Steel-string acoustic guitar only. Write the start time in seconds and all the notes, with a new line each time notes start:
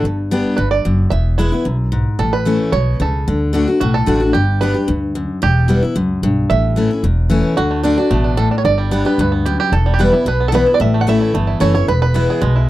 0.05 G2
0.31 G3 B3 D4 G4
0.58 G2
0.85 F#2
1.12 E2
1.38 E3 G#3 B3 E4
1.52 B3 E4
1.65 F#2
1.92 G#2
2.19 A2
2.45 E3 A3 C#4 E4
2.73 B2
3.00 C#3
3.28 D3
3.53 D3 A3 D4 F#4
3.68 D4 F#4
3.81 A2
4.06 D3 A3 D4 F#4
4.20 D4 F#4
4.35 G2
4.61 G3 B3 D4 G4
4.74 D4 G4
4.88 G2
5.15 F#2
5.42 E2
5.68 E3 G3 B3 E4
5.82 B3 E4
5.96 F#2
6.23 G2
6.50 A2
6.76 E3 A3 C#4 E4
6.91 C#4 E4
7.04 E2
7.30 E3 A3 C#4 E4
7.57 D3
7.83 D3 A3 D4 F#4
7.98 D4 F#4
8.11 B2
8.37 A2
8.65 G2
8.91 G3 B3 D4 G4
9.05 D4 G4
9.19 G2
9.46 F#2
9.73 E2
9.99 E3 G3 B3 E4
10.12 B3 E4
10.26 B2
10.52 E3 G3 B3 E4
10.66 B3 E4
10.80 A2
11.07 E3 A3 C#4 E4
11.35 E2
11.60 E3 A3 C#4 E4
11.75 C#4 E4
11.88 E2
12.14 E3 G#3 B3 E4
12.41 B2